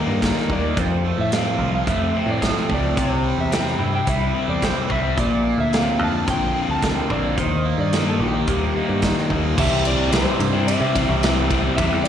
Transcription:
Already playing: D#3 G3 A#3 D#4 G4 A#4
0.07 G2
0.22 D#3 A#4, kick, snare, closed hi-hat
0.38 snare
0.49 D#2 A#3 D5, kick
0.76 F2 F3 C5, kick, closed hi-hat
1.04 A3
1.18 A2 E5
1.31 C4 F5, snare, closed hi-hat
1.58 C2 F3 F4
1.75 F5
1.86 F2 A3 E5, kick, closed hi-hat
2.14 C4
2.26 A2
2.31 D5
2.41 F3, kick, snare, closed hi-hat
2.46 A4
2.57 snare
2.69 C#2 A3 C4, kick
2.74 D5
2.97 C2 C3 C5, kick, closed hi-hat
3.23 G3
3.38 E2 E5
3.51 C4 G5, snare, closed hi-hat
3.68 snare
3.79 G2 C3 E4
3.95 G5
4.06 C2 G3 E5, kick, closed hi-hat
4.34 C4
4.48 E2 D5
4.62 C3 E3 C5, kick, snare, closed hi-hat
4.88 C2 G3 C4 E5, kick
5.17 A#1 A#2 D5, kick, closed hi-hat
5.45 A#3
5.58 D2 E5
5.73 C4 F5, snare, closed hi-hat
5.99 F2 D3 F4
6.04 A5
6.26 A#1 F3 A#3 G5, kick, closed hi-hat
6.55 C4
6.68 D2 A5
6.82 D3 A#4, kick, snare, closed hi-hat
7.10 A#1 A#3 C4 D5, kick
7.38 D#2 D#3 C5, kick, closed hi-hat
7.65 A#3
7.78 G2 D5
7.92 A#3 D#4 A#4, snare, closed hi-hat
8.08 A4
8.19 A#1 D#3 G4
8.47 D#2 G3 A#3, kick, closed hi-hat
8.75 A#3 D#4
8.89 G2
9.02 D#3, kick, snare, closed hi-hat
9.18 snare
9.30 D#2 A#3, kick
9.57 C2 C3 E3 G3 C4 E4 G4 E5, kick, crash
9.71 C2
9.84 E3 G3 C4 E4 D5, ride
9.97 C2
10.12 C2 C3 E3 G3 C4 E4 C5, snare, ride
10.26 G3 C4 E4
10.40 G2, muted overdriven electric guitar stroke, ride
10.53 G3 C4 E4
10.68 C3 E3 G3 C4 G4 E5, ride
10.81 C3 C4 E4
10.85 G3
10.95 E3 G3 C4 E4, kick, ride
11.09 C2 G3 C4 E4
11.23 C3 E3 G3 C4 E4, snare, ride
11.49 E3 G3 C4 E4, kick, ride
11.64 G3 C4 E4
11.76 E2 C3 E3 G3 C4 G4 E5, kick, ride
11.81 C4 E4
11.92 E2
12.04 D5, ride

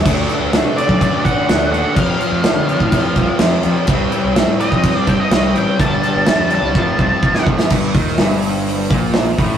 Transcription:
0.05 D2 D3 A3 D4, kick, crash
0.29 D3 A3 D4, crash
0.40 D2
0.53 D3 A3 D4, snare, crash
0.65 C3
0.77 D3 A3 D4 D5, crash
0.89 F#2, kick
1.01 D3 A3 D4, kick, crash
1.25 A1 D3 A3 D4 F#5, kick, crash
1.48 D2 D3 A3 D4, snare, crash
1.72 D#2 D3 A3 D4 F#5, crash
1.93 F2 C3 F3, kick, crash
1.98 F2 C3 F3 F5
2.18 F2 C3 F3, crash
2.22 F2 C3 F3
2.31 F2
2.44 F2 C3 F3, snare, crash
2.56 D3
2.69 F2 C3 F3, crash
2.80 A2, kick
2.89 F2, kick, crash
2.93 F2 C3 F3
3.16 C2 F2 C3 F3, kick, crash
3.39 F2 C3 F3, snare, crash
3.63 F2 C3 F3, crash
3.87 C2 C3 G3, kick, crash
3.91 C4
4.12 C3 G3 C4, crash
4.24 C2
4.36 C3 G3 C4, snare, crash
4.48 A2
4.60 C3 G3 C4 D#5, crash
4.72 F2, kick
4.83 C3 G3 C4, kick, crash
4.97 D5
5.07 G2 C3 G3 C4 G5, kick, crash
5.20 D#5
5.31 C2 C3 G3 C4, snare, crash
5.55 A1 C3 G3 C4 G5, crash
5.80 G1 G2 D3 G3 A5, kick, crash
6.03 G2 D3 G3, crash
6.15 G1
6.26 G2 D3 G3, snare, crash
6.39 F2
6.50 G2 D3 G3, crash
6.55 A5
6.61 C2
6.74 F1 F2 C3 F3, kick
6.98 C2 F2 C3 F3, kick
7.23 F1 F2 C3 F3, kick
7.34 snare
7.46 F1 F2 C3 F3, kick
7.59 snare
7.70 G1 G2, kick, crash
7.94 D#2 D#3, kick, open hi-hat
8.07 snare
8.18 G1 G2, snare, open hi-hat
8.42 open hi-hat
8.67 open hi-hat
8.89 A#1 A#2, kick, open hi-hat
9.14 snare, open hi-hat
9.38 A1 A2, kick, open hi-hat

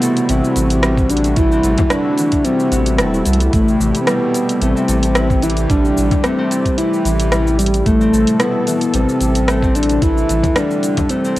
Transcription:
Already playing: C3 E3 G3 A3 B3 C4 E4 F#4
0.02 A4, closed hi-hat, cabasa
0.17 closed hi-hat, cabasa
0.29 A1 C4 E4, closed hi-hat, cabasa
0.44 cabasa
0.56 A1 E3, closed hi-hat, cabasa
0.70 closed hi-hat, cabasa
0.83 G3, cross-stick, closed hi-hat, cabasa
0.97 kick, cabasa
1.09 D4, closed hi-hat, cabasa
1.17 closed hi-hat
1.24 closed hi-hat, cabasa
1.36 A1 A3 E4, kick, closed hi-hat, cabasa
1.52 C4, cabasa
1.63 A1 A4, closed hi-hat, cabasa
1.78 kick, closed hi-hat, frame drum, cabasa
1.90 D4 E4, cross-stick, closed hi-hat, cabasa
2.18 E3, closed hi-hat, cabasa
2.32 kick, closed hi-hat, cabasa
2.45 G3 C4, closed hi-hat, cabasa
2.60 cabasa
2.72 A1 B3, closed hi-hat, cabasa
2.86 closed hi-hat, cabasa
2.98 E1 A4, cross-stick, closed hi-hat, cabasa
3.14 E4, cabasa
3.25 C2 G3 A4, closed hi-hat, cabasa
3.33 closed hi-hat
3.40 closed hi-hat, cabasa
3.53 A1 A3 E4 G4, kick, closed hi-hat, cabasa
3.68 cabasa
3.80 A1 E3, cabasa
3.95 closed hi-hat, cabasa
4.01 C4
4.07 G3 B3, cross-stick, closed hi-hat, cabasa
4.34 closed hi-hat, cabasa
4.49 closed hi-hat, cabasa
4.61 A1 A3 C4, closed hi-hat, cabasa
4.76 C4, cabasa
4.88 A1 A4, closed hi-hat, cabasa
5.03 closed hi-hat, cabasa
5.15 E4, cross-stick, closed hi-hat, cabasa
5.30 kick, cabasa
5.42 E3 E4, closed hi-hat, cabasa
5.50 closed hi-hat
5.57 closed hi-hat, cabasa
5.70 A1 G3 D4, kick, closed hi-hat, cabasa
5.85 cabasa
5.97 A1, cabasa
6.11 kick, closed hi-hat, frame drum, cabasa
6.24 A3 C4, cross-stick, closed hi-hat, cabasa
6.38 C4
6.51 A4, closed hi-hat, cabasa
6.65 kick, closed hi-hat, cabasa
6.78 E4, closed hi-hat, cabasa
6.94 cabasa
7.05 A1 E3, closed hi-hat, cabasa
7.20 closed hi-hat, cabasa
7.32 G3, cross-stick, closed hi-hat, cabasa
7.47 cabasa
7.58 G3, closed hi-hat, cabasa
7.66 closed hi-hat
7.74 closed hi-hat, cabasa
7.86 A1 A3 A4, kick, closed hi-hat, cabasa
8.01 C4, cabasa
8.13 A1 A4, cabasa
8.27 closed hi-hat, cabasa
8.40 B3 E4, cross-stick, closed hi-hat, cabasa
8.67 E3, closed hi-hat, cabasa
8.81 closed hi-hat, cabasa
8.94 A1 G3 C4, closed hi-hat, cabasa
9.09 cabasa
9.21 A1, closed hi-hat, cabasa
9.35 closed hi-hat, cabasa
9.48 A3, cross-stick, closed hi-hat, cabasa
9.63 C4, kick, cabasa
9.75 D4 A4, closed hi-hat, cabasa
9.83 closed hi-hat
9.89 closed hi-hat, cabasa
10.02 A1 E4, kick, closed hi-hat, cabasa
10.18 cabasa
10.29 A1 E3, closed hi-hat, cabasa
10.43 kick, closed hi-hat, frame drum, cabasa
10.56 G3 D4, cross-stick, closed hi-hat, cabasa
10.71 cabasa
10.83 closed hi-hat, cabasa
10.97 kick, closed hi-hat, frame drum, cabasa
11.09 A3 C4, closed hi-hat, cabasa
11.25 C4, cabasa

